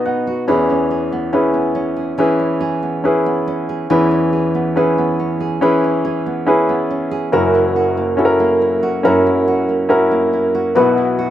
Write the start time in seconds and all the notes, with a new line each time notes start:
Already playing: B1 B2 B3 D#4 F#4 B4 D#5
0.06 D#4 F#5
0.27 F#4
0.48 E2 E3 C#4 E4 G#4 B4
0.70 C#4
0.91 G#4
1.12 B3
1.33 C#4 E4 G#4 B4
1.54 B3
1.75 C#4
1.96 G#4
2.18 E3 C#4 E4 G#4 B4
2.39 C#4
2.61 G#4
2.83 B3
3.04 C#4 E4 G#4 B4
3.26 B3
3.47 C#4
3.69 G#4
3.90 E2 E3 C#4 E4 G#4 B4
4.11 C#4
4.33 G#4
4.55 B3
4.76 C#4 E4 G#4 B4
4.98 B3
5.19 C#4
5.41 G#4
5.61 E3 C#4 E4 G#4 B4
5.84 C#4
6.05 G#4
6.26 B3
6.46 C#4 E4 G#4 B4
6.69 B3
6.91 C#4
7.11 G#4
7.32 F#1 F#2 C#4 E4 F#4 A#4
7.55 E4
7.76 F#4
7.97 A#3
8.17 C#4 E4 F#4 A4
8.25 A#4
8.40 A#3
8.62 E4
8.83 F#4
9.03 F#2 C#4 E4 F#4 A#4
9.27 E4
9.48 F#4
9.69 A#3
9.89 C#4 E4 F#4 A#4
10.11 A#3
10.33 E4
10.55 F#4
10.75 B1 B2 B3 E4 F#4 B4
10.97 E4
11.19 F#4